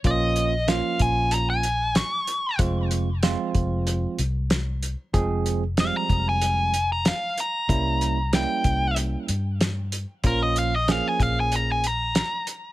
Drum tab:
HH |xxxxxxxx|xxxxxxxx|xxxxxxxx|xxxxxxxx|
SD |--o---o-|--o---o-|--o---o-|--o---o-|
BD |o--o----|o--o----|o--o----|o--o----|

HH |xxxxxxxx|
SD |--o---o-|
BD |o--o----|